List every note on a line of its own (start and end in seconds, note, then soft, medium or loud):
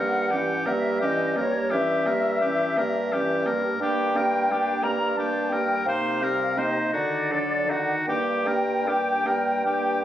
0.00 0.54 G2 soft
0.00 0.32 G3 soft
0.00 0.33 A#3 soft
0.00 0.32 A#4 soft
0.00 0.69 F#5 medium
0.31 0.67 E3 soft
0.31 0.68 C#4 soft
0.31 0.67 G4 soft
0.66 1.59 G2 soft
0.66 1.01 G3 soft
0.66 1.01 A#3 soft
0.66 1.00 A#4 soft
0.66 1.05 E5 medium
1.00 1.38 E3 soft
1.00 1.38 C#4 soft
1.00 1.38 G4 soft
1.00 1.39 D#5 medium
1.36 1.73 G3 soft
1.36 1.74 A#3 soft
1.36 1.72 A#4 soft
1.36 1.71 C#5 medium
1.71 2.64 G2 medium
1.71 2.10 E3 soft
1.71 2.07 C#4 soft
1.71 2.08 G4 soft
1.71 3.43 E5 medium
2.06 2.42 G3 soft
2.06 2.41 A#3 soft
2.06 2.40 A#4 soft
2.41 2.80 E3 soft
2.41 2.79 C#4 soft
2.41 2.79 G4 soft
2.77 3.68 G2 medium
2.77 3.15 G3 soft
2.77 3.14 A#3 soft
2.77 3.14 A#4 soft
3.12 3.50 E3 soft
3.12 3.47 C#4 soft
3.12 3.48 G4 soft
3.46 3.80 G3 soft
3.46 3.79 A#3 soft
3.46 3.80 A#4 soft
3.80 4.71 G2 medium
3.80 4.18 A#3 soft
3.80 4.17 D4 soft
3.80 4.18 G4 soft
3.80 4.84 G5 medium
4.15 4.53 G3 soft
4.15 4.51 A#3 soft
4.15 4.53 A#4 soft
4.49 4.86 A#3 soft
4.49 4.84 D4 soft
4.49 4.85 G4 soft
4.83 5.73 G2 medium
4.83 5.17 G3 soft
4.83 5.16 A#3 soft
4.83 5.17 A#4 soft
4.83 5.18 A#5 medium
5.17 5.54 A#3 soft
5.17 5.52 D4 soft
5.17 5.54 G4 soft
5.17 5.51 A5 medium
5.49 5.86 G3 soft
5.49 5.86 A#3 soft
5.49 5.86 A#4 soft
5.49 5.87 G5 medium
5.86 6.81 C3 soft
5.86 6.24 A#3 soft
5.86 6.23 D#4 soft
5.86 6.25 C5 soft
5.86 6.58 F5 medium
6.22 6.58 G3 soft
6.22 6.59 C4 soft
6.22 6.60 A#4 soft
6.57 6.94 A#3 soft
6.57 6.93 D#4 soft
6.57 6.92 C5 soft
6.57 6.95 D#5 medium
6.93 7.94 D3 soft
6.93 7.33 D#3 soft
6.93 7.34 D#4 soft
6.93 7.33 F#4 soft
6.93 7.72 D5 medium
7.31 7.68 F#3 soft
7.31 7.71 D4 soft
7.31 7.72 A4 soft
7.66 8.06 D#3 soft
7.66 8.07 D#4 soft
7.66 8.08 F#4 soft
7.66 8.08 F#5 soft
8.07 9.12 G2 soft
8.07 8.48 A#3 soft
8.07 8.49 D4 soft
8.07 8.49 G4 soft
8.07 10.04 G5 medium
8.47 8.87 G3 soft
8.47 8.88 A#3 soft
8.47 8.90 A#4 soft
8.86 9.26 A#3 soft
8.86 9.26 D4 soft
8.86 9.28 G4 soft
9.24 10.04 G2 soft
9.24 9.53 G3 soft
9.24 9.64 A#3 soft
9.24 9.65 A#4 soft
9.65 10.04 A#3 soft
9.65 10.04 D4 soft
9.65 10.04 G4 soft